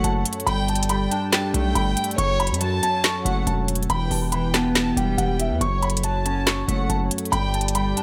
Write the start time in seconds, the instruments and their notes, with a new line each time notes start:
Already playing: clean electric guitar F#3 A3 C#4, analog synth pad F#3 F#4 A4 C#5
0.04 808-style bass F#1, clean electric guitar F#2, grand piano A5, closed hi-hat
0.26 closed hi-hat
0.33 closed hi-hat
0.40 closed hi-hat
0.47 808-style bass G1, clean electric guitar G2, analog synth pad G3 G4 D5, violin section G5, grand piano B5, closed hi-hat
0.68 grand piano A5, closed hi-hat
0.75 closed hi-hat
0.83 closed hi-hat
0.89 clean electric guitar G3, violin section G5, grand piano B5, closed hi-hat
1.11 clean electric guitar D4, grand piano A5, closed hi-hat
1.33 grand piano G5, violin section A5, snare, clap, closed hi-hat
1.54 808-style bass B1, clean electric guitar A3, violin section G5, closed hi-hat
1.75 808-style bass G1, clean electric guitar G2, grand piano B5, closed hi-hat
1.97 closed hi-hat
2.04 closed hi-hat
2.11 closed hi-hat
2.18 808-style bass F#1, clean electric guitar F#2, analog synth pad F#3 F#4 C#5, violin section C#5, grand piano C#6, closed hi-hat
2.40 grand piano B5, closed hi-hat
2.47 808-style bass F#2, closed hi-hat
2.54 closed hi-hat
2.61 clean electric guitar F#3, grand piano A5, violin section A5, closed hi-hat
2.82 clean electric guitar C#4, grand piano A5, closed hi-hat
3.04 grand piano C#6, snare, clap, closed hi-hat
3.25 808-style bass F#1, clean electric guitar A3, violin section F#5, closed hi-hat
3.47 808-style bass E1, clean electric guitar F#2, grand piano A5, closed hi-hat
3.68 closed hi-hat
3.75 closed hi-hat
3.83 closed hi-hat
3.89 808-style bass E1, clean electric guitar E2, analog synth pad E3 E4 G4 B4, violin section G5, grand piano B5, closed hi-hat
4.11 808-style bass E1, grand piano A5, open hi-hat
4.32 clean electric guitar E3, violin section G5, grand piano B5, closed hi-hat
4.54 clean electric guitar B3, grand piano A5, snare, clap, closed hi-hat
4.75 violin section A5, snare, clap, closed hi-hat
4.97 808-style bass E1, clean electric guitar G3, violin section G5, grand piano G5, closed hi-hat
5.17 808-style bass E1, clean electric guitar E2, grand piano F#5, closed hi-hat
5.40 grand piano E5, closed hi-hat
5.50 808-style bass E2
5.61 808-style bass F#1, clean electric guitar F#2, analog synth pad F#3 F#4 A4 C#5, violin section C#5, grand piano C#6, closed hi-hat
5.82 grand piano B5, closed hi-hat
5.90 closed hi-hat
5.97 closed hi-hat
6.03 clean electric guitar F#3, grand piano A5, violin section A5, closed hi-hat
6.25 clean electric guitar C#4, grand piano A5, closed hi-hat
6.47 grand piano C#6, snare, clap, closed hi-hat
6.68 808-style bass F#1, clean electric guitar A3, violin section F#5, closed hi-hat
6.89 808-style bass F#1, clean electric guitar F#2, grand piano A5, closed hi-hat
7.11 closed hi-hat
7.18 closed hi-hat
7.25 closed hi-hat
7.32 808-style bass G1, clean electric guitar G2, analog synth pad G3 G4 D5, violin section G5, grand piano B5, closed hi-hat
7.54 grand piano A5, closed hi-hat
7.61 closed hi-hat
7.68 closed hi-hat
7.75 clean electric guitar G3, violin section G5, grand piano B5, closed hi-hat
7.97 clean electric guitar D4, grand piano A5, closed hi-hat